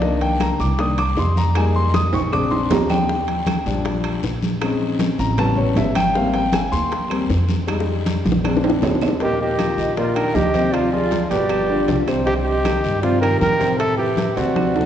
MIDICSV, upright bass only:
0, 0, Header, 1, 2, 480
1, 0, Start_track
1, 0, Key_signature, -3, "major"
1, 0, Tempo, 382653
1, 33, Time_signature, 4, 2, 24, 8
1, 18635, End_track
2, 0, Start_track
2, 0, Title_t, "Upright bass"
2, 0, Program_c, 0, 32
2, 0, Note_on_c, 0, 36, 86
2, 677, Note_off_c, 0, 36, 0
2, 745, Note_on_c, 0, 36, 99
2, 1421, Note_off_c, 0, 36, 0
2, 1467, Note_on_c, 0, 41, 92
2, 2599, Note_off_c, 0, 41, 0
2, 2675, Note_on_c, 0, 34, 92
2, 3347, Note_off_c, 0, 34, 0
2, 3390, Note_on_c, 0, 39, 86
2, 4521, Note_off_c, 0, 39, 0
2, 4591, Note_on_c, 0, 34, 96
2, 5265, Note_off_c, 0, 34, 0
2, 5311, Note_on_c, 0, 34, 91
2, 6441, Note_off_c, 0, 34, 0
2, 6510, Note_on_c, 0, 33, 93
2, 7184, Note_off_c, 0, 33, 0
2, 7228, Note_on_c, 0, 32, 87
2, 8358, Note_off_c, 0, 32, 0
2, 8433, Note_on_c, 0, 39, 101
2, 9104, Note_off_c, 0, 39, 0
2, 9153, Note_on_c, 0, 41, 96
2, 10278, Note_off_c, 0, 41, 0
2, 10354, Note_on_c, 0, 34, 98
2, 11023, Note_off_c, 0, 34, 0
2, 11067, Note_on_c, 0, 39, 90
2, 12195, Note_off_c, 0, 39, 0
2, 12263, Note_on_c, 0, 34, 85
2, 12937, Note_off_c, 0, 34, 0
2, 12981, Note_on_c, 0, 38, 87
2, 14112, Note_off_c, 0, 38, 0
2, 14190, Note_on_c, 0, 31, 88
2, 14861, Note_off_c, 0, 31, 0
2, 14903, Note_on_c, 0, 36, 88
2, 16033, Note_off_c, 0, 36, 0
2, 16108, Note_on_c, 0, 43, 85
2, 16779, Note_off_c, 0, 43, 0
2, 16828, Note_on_c, 0, 45, 81
2, 17955, Note_off_c, 0, 45, 0
2, 18026, Note_on_c, 0, 38, 83
2, 18635, Note_off_c, 0, 38, 0
2, 18635, End_track
0, 0, End_of_file